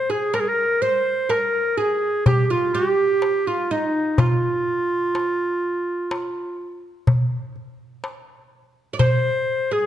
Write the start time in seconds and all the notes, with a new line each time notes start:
Already playing: C5
0.10 G#4
0.33 A#4, darbuka tek
0.40 G#4
0.48 A#4
0.82 C5
1.29 A#4, darbuka tek
1.78 G#4
2.26 G4, darbuka dum
2.50 F4
2.74 G4, darbuka ka
3.22 darbuka tek
3.47 F4
3.71 D#4
4.18 F4, darbuka dum
5.15 darbuka tek
6.11 darbuka tek
7.07 darbuka dum
7.56 darbuka ka
8.04 darbuka tek
8.93 D5
8.99 C5, darbuka dum
9.71 G#4